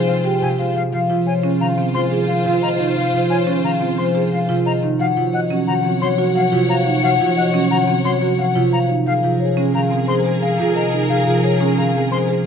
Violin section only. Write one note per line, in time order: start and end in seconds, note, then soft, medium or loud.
0.00 0.72 F4 loud
0.00 0.71 C5 loud
0.93 4.79 F4 medium
0.93 4.79 C5 medium
5.00 8.86 C#5 medium
5.00 8.86 F#5 medium
9.06 12.46 G#4 medium
9.06 12.46 A#4 medium